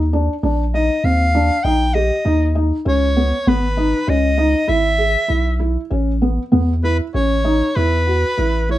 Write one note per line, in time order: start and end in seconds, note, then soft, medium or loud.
0.00 0.29 D#2 medium
0.13 0.32 D4 medium
0.43 0.90 A#1 medium
0.43 0.63 D4 medium
0.74 0.93 D#4 medium
0.74 1.06 D#5 medium
1.04 1.51 D#2 medium
1.04 1.24 C4 medium
1.04 1.65 F5 medium
1.35 1.54 D4 medium
1.64 2.12 A#1 medium
1.64 1.84 D#4 medium
1.64 1.96 G5 medium
1.95 2.14 G4 medium
1.95 2.55 D#5 medium
2.25 2.72 D#2 medium
2.25 2.44 D#4 medium
2.55 2.75 D#4 medium
2.85 3.33 C#2 medium
2.85 3.05 C#4 medium
2.85 3.50 C#5 medium
3.17 3.36 B3 medium
3.47 3.94 G#1 medium
3.47 3.66 B3 medium
3.47 4.11 B4 medium
3.77 3.97 D#4 medium
4.07 4.55 C#2 medium
4.07 4.27 C#4 medium
4.07 4.71 D#5 medium
4.38 4.57 D#4 medium
4.68 5.16 G#1 medium
4.68 4.88 E4 medium
4.68 5.61 E5 medium
4.98 5.18 G#4 medium
5.28 5.78 B1 medium
5.28 5.49 E4 medium
5.60 5.80 E4 medium
5.91 6.39 A1 loud
5.91 6.11 C#4 medium
6.22 6.42 B3 medium
6.52 7.01 E2 medium
6.52 6.72 B3 medium
6.84 7.03 E4 medium
6.84 6.98 B4 medium
7.14 7.63 A1 medium
7.14 7.34 C#4 medium
7.14 7.77 C#5 medium
7.44 7.65 D#4 medium
7.76 8.25 E2 medium
7.76 7.96 E4 medium
7.76 8.70 B4 medium
8.07 8.27 F#4 soft
8.38 8.78 A1 medium
8.38 8.58 E4 medium
8.69 8.78 E4 medium
8.69 8.78 C#5 medium